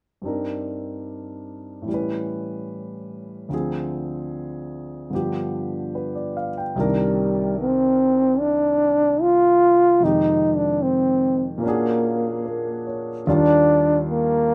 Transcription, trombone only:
6.76 6.80 F#3 soft
6.76 7.59 G3 medium
7.60 8.42 C4 medium
8.40 9.24 D4 medium
9.22 10.05 F4 medium
10.04 10.58 D#4 medium
10.57 10.84 D4 medium
10.82 11.46 C4 medium
11.64 12.95 A#3 medium
13.28 14.04 D4 loud
14.10 14.54 A#3 medium

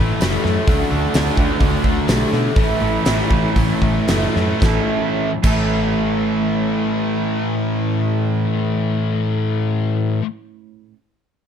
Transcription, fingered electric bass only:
0.00 0.12 A1 medium
0.22 0.36 F#1 medium
0.45 0.59 F#2 loud
0.68 0.82 D2 loud
0.92 1.06 D2 medium
1.15 1.29 D2 medium
1.37 1.52 D2 loud
1.60 1.75 D2 loud
1.84 1.99 D2 loud
2.09 2.23 B1 loud
2.33 2.48 B2 loud
2.56 2.72 A1 loud
2.82 2.97 A1 loud
3.06 3.21 A1 medium
3.30 3.46 A1 medium
3.56 3.72 A1 medium
3.81 3.98 A1 medium
4.09 4.25 F#1 medium
4.36 4.52 F#2 loud
4.62 4.78 A1 medium
5.44 10.16 A1 loud

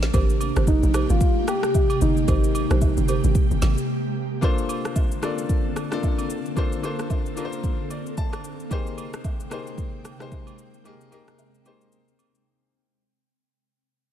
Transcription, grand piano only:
4.41 5.08 A#3 medium
4.41 5.08 D4 medium
4.41 5.08 F4 medium
4.41 5.09 A4 medium
4.41 5.09 C5 loud
5.22 5.76 A#3 medium
5.22 5.76 D4 medium
5.22 5.76 F4 medium
5.22 5.77 A4 medium
5.22 5.77 D5 medium
5.91 6.45 A#3 medium
5.91 6.45 D4 medium
5.91 6.46 F4 medium
5.91 6.46 A4 medium
5.91 6.46 D5 loud
6.55 6.78 A#3 medium
6.55 6.79 D4 medium
6.55 6.79 F4 medium
6.55 6.79 A4 medium
6.55 6.80 C5 loud
6.82 7.27 A#3 medium
6.82 7.28 D4 medium
6.82 7.28 F4 medium
6.82 7.28 A4 medium
6.82 7.29 C5 loud
7.36 8.23 A#3 medium
7.36 8.23 D4 medium
7.36 8.24 F4 medium
7.36 8.24 A4 medium
7.36 7.45 A#4 medium
7.45 8.28 C5 medium
7.91 8.16 D5 medium
8.18 8.67 A5 medium
8.70 9.36 A#3 medium
8.70 9.37 D#4 medium
8.70 9.37 G4 medium
8.70 9.37 G#4 medium
8.70 9.38 C5 loud
9.50 10.04 A#3 medium
9.50 10.05 D#4 medium
9.50 10.05 G4 medium
9.50 10.05 G#4 medium
9.50 10.06 C5 medium
10.19 10.73 A#3 medium
10.19 10.74 D#4 medium
10.19 10.74 G4 medium
10.19 10.74 G#4 medium
10.19 10.75 C5 loud
10.84 11.07 A#3 medium
10.84 11.07 D#4 medium
10.84 11.08 G4 medium
10.84 11.08 G#4 medium
10.84 11.08 A#4 loud
11.11 11.56 A#3 medium
11.11 11.56 D#4 medium
11.11 11.57 G4 medium
11.11 11.57 G#4 medium
11.11 11.57 A#4 loud
11.64 12.52 A#3 medium
11.64 12.52 D#4 medium
11.64 12.52 G4 medium
11.64 12.53 G#4 medium
11.64 12.53 C5 medium

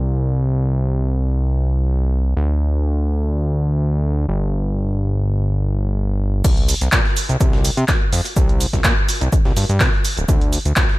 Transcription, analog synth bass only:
0.00 2.34 C2 medium
2.37 4.26 D2 medium
4.29 6.42 G1 medium
6.44 6.74 C2 loud
6.81 6.89 C2 medium
6.93 7.01 A#2 loud
7.29 7.37 C2 medium
7.40 7.70 C2 medium
7.77 7.85 C3 loud
8.12 8.21 F2 medium
8.36 8.66 C2 loud
8.73 8.81 C2 medium
8.84 8.93 A#2 loud
9.21 9.29 C2 medium
9.45 9.53 C2 medium
9.56 9.65 G2 medium
9.69 9.82 G2 loud
9.80 9.89 C3 medium
10.17 10.25 D1 medium
10.29 10.58 D2 loud
10.65 10.73 D2 medium
10.77 10.85 C2 loud

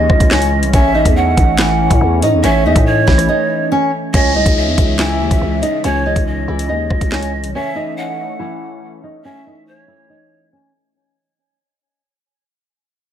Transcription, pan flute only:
0.00 0.70 D#5 medium
0.74 1.14 E5 loud
1.16 2.17 F#5 loud
2.44 2.84 E5 loud
2.86 3.67 C#5 loud
4.14 4.54 D#5 loud
4.57 5.80 E5 loud
5.84 6.24 C#5 loud
6.27 7.50 D#5 medium
7.54 7.94 E5 loud
7.97 8.93 F#5 medium
9.24 9.64 E5 loud
9.67 10.48 C#5 loud

